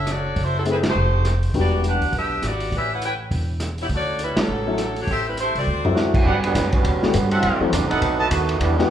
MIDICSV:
0, 0, Header, 1, 8, 480
1, 0, Start_track
1, 0, Key_signature, 2, "major"
1, 0, Tempo, 294695
1, 595, Time_signature, 4, 2, 24, 8
1, 14498, End_track
2, 0, Start_track
2, 0, Title_t, "Trumpet section"
2, 0, Program_c, 0, 61
2, 10196, Note_on_c, 0, 74, 77
2, 10199, Note_on_c, 0, 78, 86
2, 10200, Note_on_c, 0, 71, 75
2, 10202, Note_on_c, 0, 67, 86
2, 10395, Note_off_c, 0, 74, 0
2, 10397, Note_off_c, 0, 71, 0
2, 10397, Note_off_c, 0, 78, 0
2, 10398, Note_off_c, 0, 67, 0
2, 11919, Note_on_c, 0, 72, 78
2, 11920, Note_on_c, 0, 76, 85
2, 11920, Note_on_c, 0, 78, 98
2, 11921, Note_on_c, 0, 69, 90
2, 12553, Note_off_c, 0, 72, 0
2, 12554, Note_off_c, 0, 69, 0
2, 12554, Note_off_c, 0, 76, 0
2, 12554, Note_off_c, 0, 78, 0
2, 12860, Note_on_c, 0, 69, 100
2, 12863, Note_on_c, 0, 71, 87
2, 12869, Note_on_c, 0, 75, 89
2, 12871, Note_on_c, 0, 78, 99
2, 13324, Note_off_c, 0, 69, 0
2, 13326, Note_off_c, 0, 71, 0
2, 13329, Note_off_c, 0, 75, 0
2, 13329, Note_off_c, 0, 78, 0
2, 13343, Note_on_c, 0, 71, 87
2, 13345, Note_on_c, 0, 75, 83
2, 13346, Note_on_c, 0, 81, 103
2, 13351, Note_on_c, 0, 69, 84
2, 13478, Note_off_c, 0, 71, 0
2, 13480, Note_off_c, 0, 75, 0
2, 13480, Note_off_c, 0, 81, 0
2, 13483, Note_off_c, 0, 69, 0
2, 14498, End_track
3, 0, Start_track
3, 0, Title_t, "Saxophone section"
3, 0, Program_c, 1, 65
3, 0, Note_on_c, 1, 62, 75
3, 164, Note_off_c, 1, 62, 0
3, 194, Note_on_c, 1, 74, 82
3, 197, Note_on_c, 1, 66, 75
3, 199, Note_on_c, 1, 61, 77
3, 202, Note_on_c, 1, 57, 70
3, 635, Note_off_c, 1, 74, 0
3, 636, Note_off_c, 1, 66, 0
3, 637, Note_off_c, 1, 61, 0
3, 638, Note_off_c, 1, 57, 0
3, 673, Note_on_c, 1, 64, 76
3, 677, Note_on_c, 1, 57, 81
3, 680, Note_on_c, 1, 66, 80
3, 684, Note_on_c, 1, 72, 93
3, 927, Note_off_c, 1, 64, 0
3, 929, Note_off_c, 1, 57, 0
3, 931, Note_off_c, 1, 66, 0
3, 933, Note_off_c, 1, 72, 0
3, 955, Note_on_c, 1, 60, 62
3, 956, Note_on_c, 1, 69, 72
3, 966, Note_on_c, 1, 54, 63
3, 969, Note_on_c, 1, 64, 60
3, 1025, Note_off_c, 1, 60, 0
3, 1025, Note_off_c, 1, 69, 0
3, 1033, Note_off_c, 1, 54, 0
3, 1035, Note_off_c, 1, 64, 0
3, 1150, Note_on_c, 1, 71, 78
3, 1158, Note_on_c, 1, 60, 76
3, 1160, Note_on_c, 1, 56, 76
3, 1161, Note_on_c, 1, 64, 69
3, 1265, Note_off_c, 1, 71, 0
3, 1272, Note_off_c, 1, 60, 0
3, 1273, Note_off_c, 1, 56, 0
3, 1274, Note_off_c, 1, 64, 0
3, 1439, Note_on_c, 1, 57, 78
3, 1444, Note_on_c, 1, 67, 80
3, 1445, Note_on_c, 1, 72, 93
3, 1446, Note_on_c, 1, 63, 81
3, 2299, Note_off_c, 1, 57, 0
3, 2302, Note_off_c, 1, 67, 0
3, 2303, Note_off_c, 1, 63, 0
3, 2303, Note_off_c, 1, 72, 0
3, 2588, Note_on_c, 1, 67, 79
3, 2594, Note_on_c, 1, 59, 81
3, 2596, Note_on_c, 1, 66, 76
3, 2598, Note_on_c, 1, 74, 89
3, 3001, Note_off_c, 1, 67, 0
3, 3004, Note_off_c, 1, 59, 0
3, 3005, Note_off_c, 1, 66, 0
3, 3006, Note_off_c, 1, 74, 0
3, 3055, Note_on_c, 1, 62, 82
3, 3065, Note_on_c, 1, 71, 79
3, 3068, Note_on_c, 1, 78, 96
3, 3075, Note_on_c, 1, 67, 84
3, 3474, Note_off_c, 1, 62, 0
3, 3479, Note_off_c, 1, 71, 0
3, 3481, Note_off_c, 1, 78, 0
3, 3485, Note_off_c, 1, 67, 0
3, 3536, Note_on_c, 1, 71, 80
3, 3543, Note_on_c, 1, 62, 85
3, 3546, Note_on_c, 1, 76, 97
3, 3549, Note_on_c, 1, 67, 86
3, 3955, Note_off_c, 1, 71, 0
3, 3959, Note_off_c, 1, 62, 0
3, 3960, Note_off_c, 1, 76, 0
3, 3962, Note_off_c, 1, 67, 0
3, 4006, Note_on_c, 1, 67, 75
3, 4009, Note_on_c, 1, 74, 84
3, 4010, Note_on_c, 1, 66, 78
3, 4016, Note_on_c, 1, 59, 73
3, 4461, Note_off_c, 1, 67, 0
3, 4463, Note_off_c, 1, 74, 0
3, 4464, Note_off_c, 1, 66, 0
3, 4467, Note_off_c, 1, 59, 0
3, 4505, Note_on_c, 1, 61, 82
3, 4508, Note_on_c, 1, 71, 88
3, 4516, Note_on_c, 1, 76, 103
3, 4519, Note_on_c, 1, 67, 93
3, 4746, Note_off_c, 1, 61, 0
3, 4748, Note_off_c, 1, 71, 0
3, 4752, Note_off_c, 1, 76, 0
3, 4754, Note_off_c, 1, 67, 0
3, 4778, Note_on_c, 1, 73, 72
3, 4780, Note_on_c, 1, 64, 74
3, 4780, Note_on_c, 1, 71, 74
3, 4781, Note_on_c, 1, 78, 91
3, 4930, Note_off_c, 1, 73, 0
3, 4931, Note_off_c, 1, 64, 0
3, 4931, Note_off_c, 1, 71, 0
3, 4931, Note_off_c, 1, 78, 0
3, 4959, Note_on_c, 1, 64, 81
3, 4966, Note_on_c, 1, 73, 76
3, 4967, Note_on_c, 1, 79, 97
3, 4970, Note_on_c, 1, 71, 79
3, 5082, Note_off_c, 1, 64, 0
3, 5087, Note_off_c, 1, 73, 0
3, 5087, Note_off_c, 1, 79, 0
3, 5090, Note_off_c, 1, 71, 0
3, 6211, Note_on_c, 1, 64, 69
3, 6216, Note_on_c, 1, 67, 72
3, 6219, Note_on_c, 1, 73, 80
3, 6226, Note_on_c, 1, 59, 67
3, 6286, Note_off_c, 1, 64, 0
3, 6290, Note_off_c, 1, 67, 0
3, 6293, Note_off_c, 1, 73, 0
3, 6298, Note_off_c, 1, 59, 0
3, 6414, Note_on_c, 1, 66, 81
3, 6416, Note_on_c, 1, 57, 80
3, 6425, Note_on_c, 1, 61, 80
3, 6429, Note_on_c, 1, 74, 98
3, 6835, Note_off_c, 1, 66, 0
3, 6836, Note_off_c, 1, 57, 0
3, 6841, Note_off_c, 1, 61, 0
3, 6843, Note_off_c, 1, 74, 0
3, 6900, Note_on_c, 1, 61, 78
3, 6902, Note_on_c, 1, 55, 74
3, 6904, Note_on_c, 1, 64, 74
3, 6910, Note_on_c, 1, 71, 88
3, 7158, Note_off_c, 1, 61, 0
3, 7163, Note_off_c, 1, 55, 0
3, 7165, Note_off_c, 1, 64, 0
3, 7167, Note_off_c, 1, 71, 0
3, 7177, Note_on_c, 1, 61, 80
3, 7182, Note_on_c, 1, 54, 77
3, 7185, Note_on_c, 1, 62, 78
3, 7186, Note_on_c, 1, 69, 98
3, 8115, Note_off_c, 1, 61, 0
3, 8117, Note_off_c, 1, 54, 0
3, 8119, Note_off_c, 1, 62, 0
3, 8119, Note_off_c, 1, 69, 0
3, 8153, Note_on_c, 1, 57, 79
3, 8155, Note_on_c, 1, 66, 72
3, 8156, Note_on_c, 1, 62, 76
3, 8163, Note_on_c, 1, 73, 89
3, 8299, Note_off_c, 1, 57, 0
3, 8299, Note_off_c, 1, 66, 0
3, 8300, Note_off_c, 1, 62, 0
3, 8304, Note_off_c, 1, 73, 0
3, 8315, Note_on_c, 1, 67, 84
3, 8320, Note_on_c, 1, 69, 92
3, 8324, Note_on_c, 1, 60, 86
3, 8329, Note_on_c, 1, 76, 99
3, 8571, Note_off_c, 1, 67, 0
3, 8574, Note_off_c, 1, 69, 0
3, 8576, Note_off_c, 1, 60, 0
3, 8579, Note_off_c, 1, 76, 0
3, 8602, Note_on_c, 1, 55, 65
3, 8612, Note_on_c, 1, 60, 67
3, 8612, Note_on_c, 1, 64, 72
3, 8618, Note_on_c, 1, 71, 76
3, 8762, Note_off_c, 1, 55, 0
3, 8767, Note_off_c, 1, 60, 0
3, 8768, Note_off_c, 1, 64, 0
3, 8770, Note_off_c, 1, 71, 0
3, 8802, Note_on_c, 1, 72, 91
3, 8810, Note_on_c, 1, 67, 75
3, 8814, Note_on_c, 1, 64, 78
3, 8817, Note_on_c, 1, 57, 78
3, 9055, Note_off_c, 1, 72, 0
3, 9059, Note_off_c, 1, 67, 0
3, 9061, Note_off_c, 1, 64, 0
3, 9063, Note_off_c, 1, 57, 0
3, 9085, Note_on_c, 1, 69, 78
3, 9091, Note_on_c, 1, 66, 84
3, 9093, Note_on_c, 1, 74, 90
3, 9102, Note_on_c, 1, 60, 80
3, 9963, Note_off_c, 1, 69, 0
3, 9966, Note_off_c, 1, 66, 0
3, 9968, Note_off_c, 1, 74, 0
3, 9972, Note_off_c, 1, 60, 0
3, 14498, End_track
4, 0, Start_track
4, 0, Title_t, "Upright piano"
4, 0, Program_c, 2, 0
4, 1060, Note_on_c, 2, 57, 57
4, 1065, Note_on_c, 2, 60, 45
4, 1073, Note_on_c, 2, 64, 47
4, 1078, Note_on_c, 2, 68, 59
4, 1331, Note_off_c, 2, 57, 0
4, 1334, Note_off_c, 2, 60, 0
4, 1338, Note_off_c, 2, 64, 0
4, 1340, Note_off_c, 2, 68, 0
4, 2518, Note_on_c, 2, 59, 53
4, 2519, Note_on_c, 2, 62, 51
4, 2520, Note_on_c, 2, 55, 57
4, 2520, Note_on_c, 2, 66, 60
4, 3232, Note_off_c, 2, 59, 0
4, 3232, Note_off_c, 2, 62, 0
4, 3233, Note_off_c, 2, 55, 0
4, 3233, Note_off_c, 2, 66, 0
4, 7597, Note_on_c, 2, 54, 53
4, 7601, Note_on_c, 2, 61, 49
4, 7604, Note_on_c, 2, 64, 63
4, 7605, Note_on_c, 2, 57, 49
4, 7773, Note_off_c, 2, 54, 0
4, 7775, Note_off_c, 2, 61, 0
4, 7776, Note_off_c, 2, 64, 0
4, 7777, Note_off_c, 2, 57, 0
4, 9525, Note_on_c, 2, 54, 55
4, 9529, Note_on_c, 2, 64, 63
4, 9530, Note_on_c, 2, 57, 51
4, 9532, Note_on_c, 2, 60, 47
4, 10158, Note_off_c, 2, 54, 0
4, 10160, Note_off_c, 2, 57, 0
4, 10160, Note_off_c, 2, 64, 0
4, 10161, Note_off_c, 2, 60, 0
4, 11453, Note_on_c, 2, 55, 56
4, 11454, Note_on_c, 2, 57, 59
4, 11455, Note_on_c, 2, 50, 69
4, 11458, Note_on_c, 2, 66, 77
4, 11465, Note_on_c, 2, 59, 56
4, 11620, Note_off_c, 2, 55, 0
4, 11621, Note_off_c, 2, 50, 0
4, 11621, Note_off_c, 2, 57, 0
4, 11622, Note_off_c, 2, 66, 0
4, 11626, Note_off_c, 2, 59, 0
4, 12389, Note_on_c, 2, 52, 66
4, 12393, Note_on_c, 2, 60, 59
4, 12397, Note_on_c, 2, 66, 69
4, 12398, Note_on_c, 2, 54, 58
4, 12400, Note_on_c, 2, 57, 58
4, 12567, Note_off_c, 2, 52, 0
4, 12569, Note_off_c, 2, 60, 0
4, 12571, Note_off_c, 2, 66, 0
4, 12572, Note_off_c, 2, 54, 0
4, 12572, Note_off_c, 2, 57, 0
4, 14310, Note_on_c, 2, 52, 75
4, 14318, Note_on_c, 2, 55, 65
4, 14318, Note_on_c, 2, 59, 66
4, 14326, Note_on_c, 2, 62, 66
4, 14327, Note_on_c, 2, 66, 79
4, 14486, Note_off_c, 2, 52, 0
4, 14490, Note_off_c, 2, 55, 0
4, 14490, Note_off_c, 2, 59, 0
4, 14494, Note_off_c, 2, 62, 0
4, 14495, Note_off_c, 2, 66, 0
4, 14498, End_track
5, 0, Start_track
5, 0, Title_t, "Trombone section"
5, 0, Program_c, 3, 61
5, 9668, Note_on_c, 3, 66, 79
5, 9679, Note_on_c, 3, 57, 63
5, 9681, Note_on_c, 3, 52, 66
5, 9681, Note_on_c, 3, 60, 64
5, 10138, Note_off_c, 3, 66, 0
5, 10144, Note_off_c, 3, 57, 0
5, 10145, Note_off_c, 3, 52, 0
5, 10145, Note_off_c, 3, 60, 0
5, 10180, Note_on_c, 3, 59, 81
5, 10188, Note_on_c, 3, 55, 81
5, 10191, Note_on_c, 3, 62, 90
5, 10192, Note_on_c, 3, 54, 78
5, 10316, Note_off_c, 3, 59, 0
5, 10322, Note_off_c, 3, 55, 0
5, 10324, Note_off_c, 3, 62, 0
5, 10326, Note_off_c, 3, 54, 0
5, 10484, Note_on_c, 3, 55, 73
5, 10486, Note_on_c, 3, 50, 77
5, 10486, Note_on_c, 3, 59, 86
5, 10490, Note_on_c, 3, 54, 74
5, 10934, Note_off_c, 3, 55, 0
5, 10935, Note_off_c, 3, 50, 0
5, 10935, Note_off_c, 3, 59, 0
5, 10937, Note_off_c, 3, 54, 0
5, 10956, Note_on_c, 3, 54, 65
5, 10962, Note_on_c, 3, 55, 73
5, 10962, Note_on_c, 3, 59, 74
5, 10966, Note_on_c, 3, 61, 80
5, 11583, Note_off_c, 3, 54, 0
5, 11586, Note_off_c, 3, 55, 0
5, 11586, Note_off_c, 3, 59, 0
5, 11588, Note_off_c, 3, 61, 0
5, 11629, Note_on_c, 3, 54, 71
5, 11629, Note_on_c, 3, 59, 74
5, 11630, Note_on_c, 3, 50, 65
5, 11633, Note_on_c, 3, 55, 64
5, 11901, Note_off_c, 3, 54, 0
5, 11920, Note_on_c, 3, 54, 72
5, 11921, Note_on_c, 3, 52, 73
5, 11926, Note_off_c, 3, 50, 0
5, 11926, Note_off_c, 3, 59, 0
5, 11926, Note_on_c, 3, 60, 82
5, 11928, Note_off_c, 3, 55, 0
5, 11928, Note_on_c, 3, 57, 69
5, 12404, Note_off_c, 3, 54, 0
5, 12405, Note_off_c, 3, 52, 0
5, 12407, Note_off_c, 3, 60, 0
5, 12408, Note_off_c, 3, 57, 0
5, 12582, Note_on_c, 3, 60, 72
5, 12587, Note_on_c, 3, 62, 82
5, 12589, Note_on_c, 3, 52, 67
5, 12592, Note_on_c, 3, 55, 71
5, 12844, Note_on_c, 3, 59, 79
5, 12846, Note_on_c, 3, 63, 90
5, 12854, Note_on_c, 3, 57, 84
5, 12856, Note_on_c, 3, 54, 74
5, 12860, Note_off_c, 3, 60, 0
5, 12863, Note_off_c, 3, 62, 0
5, 12864, Note_off_c, 3, 52, 0
5, 12866, Note_off_c, 3, 55, 0
5, 13496, Note_off_c, 3, 59, 0
5, 13498, Note_off_c, 3, 57, 0
5, 13513, Note_on_c, 3, 66, 91
5, 13516, Note_on_c, 3, 59, 77
5, 13518, Note_on_c, 3, 57, 78
5, 13522, Note_on_c, 3, 51, 85
5, 13533, Note_off_c, 3, 63, 0
5, 13538, Note_off_c, 3, 54, 0
5, 13988, Note_off_c, 3, 59, 0
5, 13996, Note_on_c, 3, 55, 89
5, 14001, Note_on_c, 3, 52, 85
5, 14007, Note_on_c, 3, 62, 103
5, 14008, Note_on_c, 3, 59, 87
5, 14013, Note_off_c, 3, 66, 0
5, 14015, Note_off_c, 3, 57, 0
5, 14017, Note_off_c, 3, 51, 0
5, 14268, Note_off_c, 3, 52, 0
5, 14273, Note_off_c, 3, 55, 0
5, 14278, Note_off_c, 3, 59, 0
5, 14286, Note_on_c, 3, 50, 76
5, 14288, Note_on_c, 3, 52, 87
5, 14292, Note_on_c, 3, 55, 82
5, 14297, Note_on_c, 3, 59, 86
5, 14313, Note_off_c, 3, 62, 0
5, 14498, Note_off_c, 3, 50, 0
5, 14498, Note_off_c, 3, 52, 0
5, 14498, Note_off_c, 3, 55, 0
5, 14498, Note_off_c, 3, 59, 0
5, 14498, End_track
6, 0, Start_track
6, 0, Title_t, "Upright bass"
6, 0, Program_c, 4, 32
6, 0, Note_on_c, 4, 30, 86
6, 543, Note_off_c, 4, 30, 0
6, 590, Note_on_c, 4, 30, 74
6, 1505, Note_off_c, 4, 30, 0
6, 1550, Note_on_c, 4, 29, 81
6, 2465, Note_off_c, 4, 29, 0
6, 2508, Note_on_c, 4, 28, 80
6, 3231, Note_off_c, 4, 28, 0
6, 3277, Note_on_c, 4, 38, 69
6, 3446, Note_off_c, 4, 38, 0
6, 3456, Note_on_c, 4, 35, 77
6, 3912, Note_off_c, 4, 35, 0
6, 3943, Note_on_c, 4, 32, 72
6, 4396, Note_off_c, 4, 32, 0
6, 4424, Note_on_c, 4, 33, 75
6, 5342, Note_off_c, 4, 33, 0
6, 5391, Note_on_c, 4, 28, 86
6, 6307, Note_off_c, 4, 28, 0
6, 6340, Note_on_c, 4, 38, 87
6, 7068, Note_off_c, 4, 38, 0
6, 7299, Note_on_c, 4, 33, 82
6, 8221, Note_off_c, 4, 33, 0
6, 8263, Note_on_c, 4, 33, 76
6, 8990, Note_off_c, 4, 33, 0
6, 9042, Note_on_c, 4, 36, 64
6, 9221, Note_off_c, 4, 36, 0
6, 9228, Note_on_c, 4, 38, 83
6, 10145, Note_off_c, 4, 38, 0
6, 10186, Note_on_c, 4, 43, 83
6, 10657, Note_off_c, 4, 43, 0
6, 10666, Note_on_c, 4, 42, 93
6, 11137, Note_off_c, 4, 42, 0
6, 11147, Note_on_c, 4, 38, 79
6, 11425, Note_off_c, 4, 38, 0
6, 11629, Note_on_c, 4, 43, 97
6, 12094, Note_off_c, 4, 43, 0
6, 12103, Note_on_c, 4, 42, 85
6, 12373, Note_off_c, 4, 42, 0
6, 12576, Note_on_c, 4, 40, 85
6, 12726, Note_on_c, 4, 36, 60
6, 12750, Note_off_c, 4, 40, 0
6, 12887, Note_off_c, 4, 36, 0
6, 12897, Note_on_c, 4, 33, 68
6, 13047, Note_off_c, 4, 33, 0
6, 13057, Note_on_c, 4, 35, 84
6, 13524, Note_off_c, 4, 35, 0
6, 13534, Note_on_c, 4, 39, 90
6, 14002, Note_off_c, 4, 39, 0
6, 14011, Note_on_c, 4, 40, 85
6, 14483, Note_off_c, 4, 40, 0
6, 14498, End_track
7, 0, Start_track
7, 0, Title_t, "Muted upright bass strokes"
7, 7117, Note_on_c, 9, 29, 38
7, 7280, Note_off_c, 9, 29, 0
7, 11446, Note_on_c, 9, 29, 36
7, 11609, Note_off_c, 9, 29, 0
7, 12382, Note_on_c, 9, 29, 44
7, 12545, Note_off_c, 9, 29, 0
7, 14498, End_track
8, 0, Start_track
8, 0, Title_t, "Drums"
8, 110, Note_on_c, 9, 37, 55
8, 112, Note_on_c, 9, 42, 52
8, 273, Note_off_c, 9, 37, 0
8, 275, Note_off_c, 9, 42, 0
8, 591, Note_on_c, 9, 36, 29
8, 591, Note_on_c, 9, 46, 43
8, 753, Note_off_c, 9, 36, 0
8, 754, Note_off_c, 9, 46, 0
8, 1067, Note_on_c, 9, 42, 47
8, 1230, Note_off_c, 9, 42, 0
8, 1356, Note_on_c, 9, 38, 74
8, 1357, Note_on_c, 9, 51, 59
8, 1519, Note_off_c, 9, 38, 0
8, 1520, Note_off_c, 9, 51, 0
8, 2032, Note_on_c, 9, 37, 57
8, 2034, Note_on_c, 9, 42, 49
8, 2195, Note_off_c, 9, 37, 0
8, 2197, Note_off_c, 9, 42, 0
8, 2326, Note_on_c, 9, 46, 35
8, 2489, Note_off_c, 9, 46, 0
8, 2506, Note_on_c, 9, 36, 30
8, 2512, Note_on_c, 9, 46, 41
8, 2669, Note_off_c, 9, 36, 0
8, 2675, Note_off_c, 9, 46, 0
8, 2997, Note_on_c, 9, 42, 47
8, 3160, Note_off_c, 9, 42, 0
8, 3285, Note_on_c, 9, 46, 34
8, 3448, Note_off_c, 9, 46, 0
8, 3463, Note_on_c, 9, 36, 28
8, 3463, Note_on_c, 9, 46, 40
8, 3626, Note_off_c, 9, 36, 0
8, 3626, Note_off_c, 9, 46, 0
8, 3949, Note_on_c, 9, 37, 60
8, 3951, Note_on_c, 9, 42, 51
8, 4112, Note_off_c, 9, 37, 0
8, 4114, Note_off_c, 9, 42, 0
8, 4240, Note_on_c, 9, 46, 39
8, 4403, Note_off_c, 9, 46, 0
8, 4428, Note_on_c, 9, 36, 31
8, 4434, Note_on_c, 9, 46, 40
8, 4591, Note_off_c, 9, 36, 0
8, 4597, Note_off_c, 9, 46, 0
8, 4914, Note_on_c, 9, 42, 51
8, 5076, Note_off_c, 9, 42, 0
8, 5389, Note_on_c, 9, 36, 28
8, 5398, Note_on_c, 9, 46, 45
8, 5551, Note_off_c, 9, 36, 0
8, 5561, Note_off_c, 9, 46, 0
8, 5863, Note_on_c, 9, 37, 56
8, 5865, Note_on_c, 9, 42, 54
8, 6026, Note_off_c, 9, 37, 0
8, 6028, Note_off_c, 9, 42, 0
8, 6157, Note_on_c, 9, 46, 37
8, 6319, Note_off_c, 9, 46, 0
8, 6342, Note_on_c, 9, 46, 40
8, 6344, Note_on_c, 9, 36, 30
8, 6504, Note_off_c, 9, 46, 0
8, 6506, Note_off_c, 9, 36, 0
8, 6822, Note_on_c, 9, 42, 51
8, 6985, Note_off_c, 9, 42, 0
8, 7110, Note_on_c, 9, 38, 80
8, 7112, Note_on_c, 9, 51, 61
8, 7273, Note_off_c, 9, 38, 0
8, 7275, Note_off_c, 9, 51, 0
8, 7785, Note_on_c, 9, 37, 62
8, 7786, Note_on_c, 9, 42, 51
8, 7947, Note_off_c, 9, 37, 0
8, 7949, Note_off_c, 9, 42, 0
8, 8084, Note_on_c, 9, 46, 36
8, 8246, Note_off_c, 9, 46, 0
8, 8264, Note_on_c, 9, 36, 31
8, 8267, Note_on_c, 9, 46, 39
8, 8427, Note_off_c, 9, 36, 0
8, 8430, Note_off_c, 9, 46, 0
8, 8754, Note_on_c, 9, 42, 53
8, 8916, Note_off_c, 9, 42, 0
8, 9046, Note_on_c, 9, 46, 37
8, 9209, Note_off_c, 9, 46, 0
8, 9526, Note_on_c, 9, 43, 65
8, 9689, Note_off_c, 9, 43, 0
8, 9710, Note_on_c, 9, 38, 53
8, 9873, Note_off_c, 9, 38, 0
8, 10001, Note_on_c, 9, 36, 69
8, 10005, Note_on_c, 9, 49, 67
8, 10164, Note_off_c, 9, 36, 0
8, 10168, Note_off_c, 9, 49, 0
8, 10192, Note_on_c, 9, 36, 23
8, 10354, Note_off_c, 9, 36, 0
8, 10482, Note_on_c, 9, 51, 49
8, 10645, Note_off_c, 9, 51, 0
8, 10668, Note_on_c, 9, 36, 27
8, 10669, Note_on_c, 9, 38, 36
8, 10670, Note_on_c, 9, 44, 56
8, 10670, Note_on_c, 9, 51, 67
8, 10830, Note_off_c, 9, 36, 0
8, 10832, Note_off_c, 9, 38, 0
8, 10833, Note_off_c, 9, 44, 0
8, 10833, Note_off_c, 9, 51, 0
8, 10953, Note_on_c, 9, 51, 48
8, 10959, Note_on_c, 9, 36, 56
8, 11115, Note_off_c, 9, 51, 0
8, 11122, Note_off_c, 9, 36, 0
8, 11147, Note_on_c, 9, 36, 22
8, 11149, Note_on_c, 9, 51, 65
8, 11310, Note_off_c, 9, 36, 0
8, 11312, Note_off_c, 9, 51, 0
8, 11447, Note_on_c, 9, 38, 45
8, 11609, Note_off_c, 9, 38, 0
8, 11622, Note_on_c, 9, 44, 66
8, 11622, Note_on_c, 9, 51, 69
8, 11625, Note_on_c, 9, 36, 29
8, 11785, Note_off_c, 9, 44, 0
8, 11785, Note_off_c, 9, 51, 0
8, 11788, Note_off_c, 9, 36, 0
8, 11911, Note_on_c, 9, 51, 48
8, 12073, Note_off_c, 9, 51, 0
8, 12095, Note_on_c, 9, 51, 65
8, 12103, Note_on_c, 9, 36, 25
8, 12258, Note_off_c, 9, 51, 0
8, 12266, Note_off_c, 9, 36, 0
8, 12582, Note_on_c, 9, 36, 19
8, 12585, Note_on_c, 9, 44, 64
8, 12585, Note_on_c, 9, 51, 69
8, 12745, Note_off_c, 9, 36, 0
8, 12748, Note_off_c, 9, 44, 0
8, 12748, Note_off_c, 9, 51, 0
8, 12880, Note_on_c, 9, 51, 48
8, 13043, Note_off_c, 9, 51, 0
8, 13058, Note_on_c, 9, 51, 63
8, 13059, Note_on_c, 9, 36, 18
8, 13221, Note_off_c, 9, 51, 0
8, 13222, Note_off_c, 9, 36, 0
8, 13534, Note_on_c, 9, 44, 54
8, 13534, Note_on_c, 9, 51, 76
8, 13538, Note_on_c, 9, 36, 26
8, 13697, Note_off_c, 9, 44, 0
8, 13697, Note_off_c, 9, 51, 0
8, 13701, Note_off_c, 9, 36, 0
8, 13824, Note_on_c, 9, 51, 49
8, 13987, Note_off_c, 9, 51, 0
8, 14015, Note_on_c, 9, 36, 19
8, 14017, Note_on_c, 9, 51, 65
8, 14178, Note_off_c, 9, 36, 0
8, 14180, Note_off_c, 9, 51, 0
8, 14314, Note_on_c, 9, 38, 36
8, 14476, Note_off_c, 9, 38, 0
8, 14498, End_track
0, 0, End_of_file